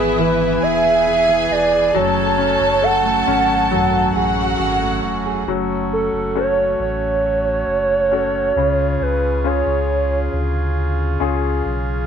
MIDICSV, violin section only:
0, 0, Header, 1, 2, 480
1, 0, Start_track
1, 0, Key_signature, 3, "minor"
1, 0, Tempo, 882353
1, 1056, Time_signature, 4, 2, 24, 8
1, 2977, Key_signature, 3, "minor"
1, 6564, End_track
2, 0, Start_track
2, 0, Title_t, "Violin section"
2, 0, Program_c, 0, 48
2, 0, Note_on_c, 0, 64, 82
2, 0, Note_on_c, 0, 76, 88
2, 315, Note_off_c, 0, 76, 0
2, 316, Note_off_c, 0, 64, 0
2, 342, Note_on_c, 0, 68, 81
2, 343, Note_on_c, 0, 80, 87
2, 1045, Note_off_c, 0, 68, 0
2, 1045, Note_off_c, 0, 80, 0
2, 1058, Note_on_c, 0, 69, 81
2, 1060, Note_on_c, 0, 81, 96
2, 2236, Note_off_c, 0, 69, 0
2, 2237, Note_off_c, 0, 81, 0
2, 2254, Note_on_c, 0, 78, 87
2, 2256, Note_on_c, 0, 66, 77
2, 2961, Note_off_c, 0, 78, 0
2, 2962, Note_off_c, 0, 66, 0
2, 6564, End_track
0, 0, End_of_file